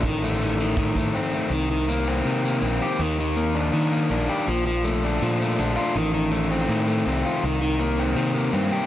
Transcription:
<<
  \new Staff \with { instrumentName = "Overdriven electric guitar" } { \time 4/4 \key c \dorian \tempo 4 = 162 ees8 a8 ees8 ees8 ees8 a8 c'8 a8 | ees8 ees8 bes8 c'8 ees8 bes8 c'8 g'8 | ees8 ees8 bes8 d'8 ees8 bes8 d'8 g'8 | f8 f8 a8 d'8 f8 a8 d'8 f'8 |
ees8 ees8 a8 c'8 ees8 a8 c'8 f'8 | ees8 ees8 bes8 c'8 ees8 bes8 c'8 g'8 | }
  \new Staff \with { instrumentName = "Picked electric bass" } { \clef bass \time 4/4 \key c \dorian a,,2 a,8 a,8 r4 | c,2 c4 bes,,8 r8 | ees,2 ees4 bes,,8 r8 | bes,,2 bes,4 bes,,8 r8 |
a,,2 a,4 c,8 r8 | c,2 c4 g,8 r8 | }
  \new DrumStaff \with { instrumentName = "Drums" } \drummode { \time 4/4 <hho bd>4 hho4 <hho bd>8 bd8 hho4 | r4 r4 r4 r4 | r4 r4 r4 r4 | r4 r4 r4 r4 |
r4 r4 r4 r4 | r4 r4 r4 r4 | }
>>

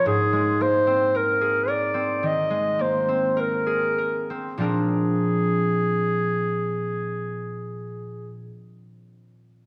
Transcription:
<<
  \new Staff \with { instrumentName = "Clarinet" } { \time 4/4 \key bes \mixolydian \tempo 4 = 48 aes'8 c''8 bes'8 d''8 ees''8 c''8 bes'8. r16 | aes'2. r4 | }
  \new Staff \with { instrumentName = "Harp" } { \time 4/4 \key bes \mixolydian <aes, bes bes'>16 aes16 bes16 c'16 bes'16 aes'16 bes'16 c'16 ees16 aes16 bes16 c'16 bes'16 aes'16 bes'16 c'16 | <bes, f c' d' bes'>1 | }
>>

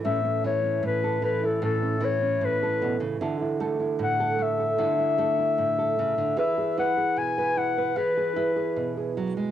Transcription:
<<
  \new Staff \with { instrumentName = "Clarinet" } { \time 4/4 \key a \major \tempo 4 = 76 e''8 cis''8 b'8 b'16 a'16 a'8 cis''8 b'8. r16 | r4 fis''8 e''2~ e''8 | e''8 fis''8 gis''8 fis''8 b'4. r8 | }
  \new Staff \with { instrumentName = "Nylon-string guitar" } { \time 4/4 \key a \major << { <cis' e' a'>16 cis'16 e'16 cis'8 a'8 e'16 <cis' e'>16 cis'16 e'16 cis'8 a'8. | <e' a'>16 e'16 a'16 e'8 a'8 a'16 <e' a'>16 e'16 a'16 e'8 a'8. | <gis' b'>16 gis'16 b'16 gis'8 b'8 b'16 gis'16 gis'16 gis'16 gis'8 gis'8. | } \\ { <a, e>8 e8 a,8 e8 a,8 e8 a,8 b,16 cis16 | d8 a8 a,8 a8 d8 a8 a,8 cis16 d16 | e8 e'8 b,8 e'8 e8 e'8 b,8 fis16 gis16 | } >> }
>>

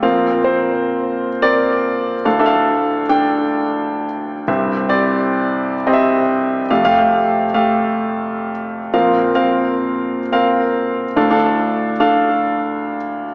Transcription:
<<
  \new Staff \with { instrumentName = "Grand piano" } { \time 4/4 \key bes \lydian \tempo 4 = 108 <c' bes' f''>8. <c' bes' c''>4. r16 <c' bes' d''>4~ <c' bes' d''>16 r16 | <d' a' f''>16 <d' a' e'' f''>4 r16 <d' a' g''>4.~ <d' a' g''>16 r8. | <c' g' e''>8. <c' g' d''>4. r16 <c' g' ees'' e''>4~ <c' g' ees'' e''>16 r16 | <a g' f''>16 <a g' f''>4 r16 <a g' f''>4.~ <a g' f''>16 r8. |
<c' bes' f''>8. <c' bes' f''>4. r16 <c' bes' f''>4~ <c' bes' f''>16 r16 | <d' a' f''>16 <d' a' f''>4 r16 <d' a' f''>4.~ <d' a' f''>16 r8. | }
  \new Staff \with { instrumentName = "Grand piano" } { \clef bass \time 4/4 \key bes \lydian <bes, f>1 | <d, a,>1 | <c, g,>1 | <f, c>1 |
<bes, f>1 | <d, a,>1 | }
>>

